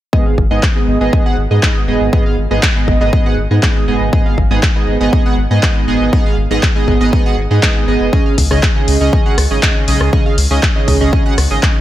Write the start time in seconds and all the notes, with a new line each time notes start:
0.13 G#2 B3 G#4 D#5, kick
0.26 G#2 B3 G#4 F5
0.38 G#1, kick
0.51 G#1 G#2 B3 G#4 D#5
0.63 kick, clap
0.76 G#2 B3 G#4 D#5
0.88 G#1
1.01 G#1 G#2 B3 G#4 D#5
1.13 G#2 B3 G#4 D#5, kick
1.26 G#2 B3 G#4 F#5
1.38 G#1
1.51 G#2 B3 G#4 D#5
1.63 G#2 B3 G#4 D#5, kick, clap
1.88 F#1 G#2 B3 G#4 D#5
2.01 G#1
2.13 G#2 B3 G#4 D#5, kick
2.26 G#2 B3 G#4 F5
2.38 G#1
2.51 G#1 G#2 B3 G#4 D#5
2.63 kick, clap
2.76 G#2 B3 G#4 D#5
2.88 G#1, kick
3.01 G#1 G#2 B3 G#4 D#5
3.13 G#2 B3 G#4 D#5, kick
3.26 G#2 B3 G#4 F#5
3.38 G#1
3.51 G#2 B3 G#4 D#5
3.63 G#2 B3 G#4 D#5, kick, clap
3.88 F#1 G#2 B3 G#4 D#5
4.01 G#1
4.13 G#2 B3 G#4 D#5, kick
4.26 G#2 B3 G#4 F5
4.38 G#1, kick
4.51 G#1 G#2 B3 G#4 D#5
4.63 kick, clap
4.76 G#2 B3 G#4 D#5
4.88 G#1
5.01 G#1 G#2 B3 G#4 D#5
5.13 G#2 B3 G#4 D#5, kick
5.26 G#2 B3 G#4 F#5
5.38 G#1
5.51 G#2 B3 G#4 D#5
5.63 G#2 B3 G#4 D#5, kick, clap
5.88 F#1 G#2 B3 G#4 D#5
6.01 G#1
6.13 G#2 B3 G#4 D#5, kick
6.26 G#2 B3 G#4 F5
6.38 G#1
6.51 G#1 G#2 B3 G#4 D#5
6.63 kick, clap
6.76 G#2 B3 G#4 D#5
6.88 G#1, kick
7.01 G#1 G#2 B3 G#4 D#5
7.13 G#2 B3 G#4 D#5, kick
7.26 G#2 B3 G#4 F#5
7.38 G#1
7.51 G#2 B3 G#4 D#5
7.63 G#2 B3 G#4 D#5, kick, clap
7.88 G#1 B3 G#4 D#5
8.01 F#1
8.13 C#3 C#4 G#4 D#5, kick
8.26 C#3 C#4 G#4 F5
8.38 C#2, kick, open hi-hat
8.51 C#2 C#3 C#4 G#4 D#5, cross-stick
8.63 kick, clap
8.76 C#3 C#4 G#4 D#5
8.88 C#2, open hi-hat
9.01 C#2 C#3 C#4 G#4 D#5
9.13 C#3 C#4 G#4 D#5, kick
9.26 C#3 C#4 G#4 F#5
9.38 C#2, cross-stick, open hi-hat
9.51 G#1 C#3 C#4 G#4 D#5
9.63 C#3 C#4 G#4 D#5, kick, clap
9.88 B1 C#3 C#4 G#4 D#5, open hi-hat
10.01 C#2, cross-stick
10.13 C#3 C#4 G#4 D#5, kick
10.26 C#3 C#4 G#4 F5
10.38 C#2, open hi-hat
10.51 C#2 C#3 C#4 G#4 D#5
10.63 kick, clap
10.76 C#3 C#4 G#4 D#5
10.88 C#2, kick, open hi-hat
11.01 C#2 C#3 C#4 G#4 D#5
11.13 C#3 C#4 G#4 D#5, kick
11.26 C#3 C#4 G#4 F#5
11.38 C#2, cross-stick, open hi-hat
11.51 G#1 C#3 C#4 G#4 D#5
11.63 C#3 C#4 G#4 D#5, kick, clap